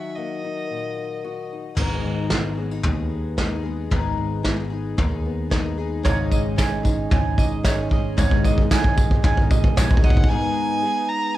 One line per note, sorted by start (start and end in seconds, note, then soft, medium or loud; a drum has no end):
0.00 1.74 D#3 medium
0.00 1.74 F#3 soft
0.00 0.44 D#4 soft
0.00 1.23 F#4 medium
0.00 0.17 E5 medium
0.16 1.74 A#3 soft
0.16 1.50 D#5 medium
0.44 0.97 D#4 soft
0.70 1.74 A#2 soft
0.98 1.51 D#4 soft
1.24 1.78 F#4 medium
1.53 1.75 D#4 soft
1.75 2.02 G#1 medium
1.75 2.30 G#2 medium
1.75 3.91 G#2 medium
1.75 2.30 D#3 medium
1.75 2.29 G#3 medium
1.75 2.29 B3 medium
1.75 2.31 D#4 medium
1.75 2.32 G#4 medium
1.75 kick soft
1.75 floor tom medium
1.75 crash medium
2.04 2.81 G#1 medium
2.04 3.64 G#3 soft
2.29 2.57 G#3 medium
2.29 2.58 B3 medium
2.29 3.10 B3 soft
2.29 2.57 D#4 medium
2.29 2.56 G#4 medium
2.29 kick soft
2.29 snare medium
2.57 2.82 G#3 soft
2.57 2.83 B3 soft
2.57 2.71 C#4 soft
2.57 2.84 D#4 soft
2.57 2.84 G#4 soft
2.71 3.36 D#4 soft
2.83 3.87 D#2 medium
2.83 3.36 G#3 medium
2.83 3.37 B3 medium
2.83 3.38 D#4 medium
2.83 4.98 G#4 soft
2.83 3.40 G#4 medium
2.83 kick medium
2.83 floor tom loud
3.11 3.88 B3 soft
3.37 3.64 G#3 medium
3.37 3.65 B3 medium
3.37 4.72 D#4 medium
3.37 3.63 D#4 medium
3.37 3.62 G#4 medium
3.37 kick soft
3.37 snare medium
3.63 4.17 G#3 soft
3.63 3.90 G#3 soft
3.63 3.91 B3 soft
3.63 3.91 D#4 soft
3.63 3.91 G#4 medium
3.90 4.16 G#1 medium
3.90 4.44 G#2 medium
3.90 6.02 G#2 medium
3.90 4.44 D#3 medium
3.90 4.43 G#3 medium
3.90 4.44 B3 medium
3.90 4.46 D#4 medium
3.90 4.46 G#4 medium
3.90 kick medium
3.90 floor tom medium
4.18 4.94 G#1 medium
4.18 5.77 G#3 medium
4.43 4.71 G#3 medium
4.43 5.24 B3 soft
4.43 4.71 B3 medium
4.43 4.70 D#4 medium
4.43 4.69 G#4 medium
4.43 kick medium
4.43 snare medium
4.70 4.96 G#3 soft
4.70 4.97 B3 soft
4.70 4.98 D#4 soft
4.70 5.51 D#4 medium
4.70 4.98 G#4 medium
4.97 6.01 D#2 medium
4.97 5.50 G#3 medium
4.97 5.50 B3 medium
4.97 5.52 D#4 medium
4.97 6.02 G#4 soft
4.97 5.53 G#4 medium
4.97 kick medium
4.97 floor tom loud
5.26 6.02 B3 medium
5.50 5.78 G#3 medium
5.50 5.78 B3 medium
5.50 5.78 D#4 medium
5.50 6.02 D#4 medium
5.50 5.76 G#4 medium
5.50 kick medium
5.50 snare medium
5.78 6.02 G#3 medium
5.78 6.03 G#3 medium
5.78 6.05 B3 medium
5.78 6.04 D#4 medium
5.78 6.05 G#4 medium
6.03 8.14 G#1 medium
6.03 6.30 G#1 loud
6.03 6.57 G#2 medium
6.03 8.14 G#2 medium
6.03 6.58 C#3 medium
6.03 8.13 G#3 medium
6.03 6.56 G#3 medium
6.03 10.28 G#3 medium
6.03 6.56 C#4 loud
6.03 8.17 C#4 medium
6.03 8.14 D#4 medium
6.03 6.58 D#4 medium
6.03 10.28 D#4 medium
6.03 6.59 G#4 medium
6.03 8.14 C#5 medium
6.03 7.11 C#5 medium
6.03 8.14 D#5 medium
6.03 kick medium
6.03 floor tom loud
6.03 tambourine medium
6.32 7.08 G#1 medium
6.32 7.37 D#5 medium
6.32 kick medium
6.32 tambourine medium
6.56 6.84 G#3 medium
6.56 6.84 C#4 medium
6.56 6.83 D#4 medium
6.56 6.82 G#4 medium
6.56 7.10 G#5 medium
6.56 kick medium
6.56 snare loud
6.56 tambourine medium
6.83 7.09 G#3 soft
6.83 7.10 C#4 medium
6.83 7.11 D#4 medium
6.83 7.11 G#4 medium
6.83 kick medium
6.83 tambourine medium
7.10 8.14 G#1 loud
7.10 7.63 G#3 medium
7.10 7.63 C#4 medium
7.10 7.65 D#4 medium
7.10 7.67 G#4 medium
7.10 8.18 G#5 medium
7.10 kick loud
7.10 floor tom loud
7.38 7.91 D#5 medium
7.38 kick loud
7.38 tambourine medium
7.63 7.91 G#3 medium
7.63 7.90 C#4 medium
7.63 7.89 D#4 medium
7.63 7.88 G#4 medium
7.63 8.18 C#5 medium
7.63 kick medium
7.63 snare loud
7.63 tambourine medium
7.89 8.17 G#3 medium
7.89 8.17 C#4 medium
7.89 8.17 D#4 medium
7.89 8.17 G#4 medium
7.89 8.44 D#5 medium
7.89 kick medium
8.17 8.42 G#1 loud
8.17 10.27 G#1 medium
8.17 8.71 G#2 medium
8.17 10.27 G#2 medium
8.17 8.71 C#3 medium
8.17 9.74 G#3 medium
8.17 8.69 G#3 loud
8.17 10.29 B3 medium
8.17 8.70 C#4 loud
8.17 9.74 D#4 medium
8.17 8.71 D#4 loud
8.17 8.71 G#4 loud
8.17 9.75 C#5 medium
8.17 9.25 C#5 medium
8.17 9.75 F#5 medium
8.17 kick medium
8.17 floor tom loud
8.17 tambourine medium
8.31 kick loud
8.44 9.21 G#1 medium
8.44 9.50 D#5 medium
8.44 kick medium
8.44 tambourine medium
8.58 kick medium
8.70 8.97 G#3 medium
8.70 8.97 C#4 medium
8.70 8.96 D#4 medium
8.70 8.95 G#4 medium
8.70 9.23 G#5 medium
8.70 kick loud
8.70 snare loud
8.70 tambourine loud
8.84 kick loud
8.96 9.21 G#3 medium
8.96 9.22 C#4 medium
8.96 9.23 D#4 medium
8.96 9.24 G#4 medium
8.96 kick loud
8.96 tambourine medium
9.11 kick loud
9.22 9.73 G#1 medium
9.22 9.75 G#3 medium
9.22 9.76 C#4 medium
9.22 9.78 D#4 medium
9.22 9.78 G#4 medium
9.22 10.31 G#5 loud
9.22 kick loud
9.22 floor tom loud
9.22 tambourine soft
9.38 kick loud
9.51 10.03 D#5 medium
9.51 kick loud
9.51 tambourine medium
9.64 kick loud
9.76 10.01 A#1 medium
9.76 10.03 G#3 medium
9.76 10.31 G#3 medium
9.76 10.03 C#4 medium
9.76 10.31 D#4 medium
9.76 10.03 D#4 medium
9.76 10.01 G#4 medium
9.76 10.31 C#5 medium
9.76 10.31 D#5 medium
9.76 kick loud
9.76 snare loud
9.76 tambourine loud
9.91 kick loud
9.97 kick loud
10.02 10.28 G#1 medium
10.02 10.29 G#3 medium
10.02 10.30 C#4 medium
10.02 10.30 D#4 medium
10.02 10.30 G#4 medium
10.02 10.31 D#5 medium
10.02 10.31 F#5 medium
10.02 kick loud
10.02 tambourine soft
10.10 kick loud
10.17 kick loud
10.24 kick loud
10.29 10.83 G#2 medium
10.29 10.83 D#3 medium
10.29 10.82 G#3 medium
10.29 11.38 G#3 medium
10.29 10.84 B3 loud
10.29 11.38 B3 medium
10.29 11.38 D#4 medium
10.29 10.83 D#4 medium
10.29 10.85 G#4 loud
10.29 11.10 G#5 loud
10.83 11.37 G#3 medium
10.83 11.38 B3 medium
10.83 11.37 D#4 medium
10.83 11.38 G#4 medium
11.09 11.36 A#5 loud
11.34 11.38 G#5 loud